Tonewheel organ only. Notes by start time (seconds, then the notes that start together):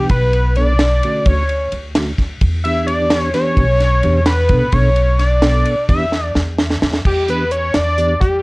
Already playing: E3 B3 D4 G4
0.57 B2 B3 D4 A4
1.04 D3 A3 C#4 F#4
1.27 D3 A3 C#4 F#4
1.96 D3 A3 C#4 F#4
2.65 E3 B3 D4 G4
3.34 E3 B3 D4 G4
4.04 E3 B3 D4 G4
4.51 B2 B3 D4 A4
4.73 B2 B3 D4 A4
5.42 B2 B3 D4 A4
5.89 E3 B3 D4 G4
6.59 E5
7.28 E3 B3 D4 G4
7.98 E3 B3 D4 G4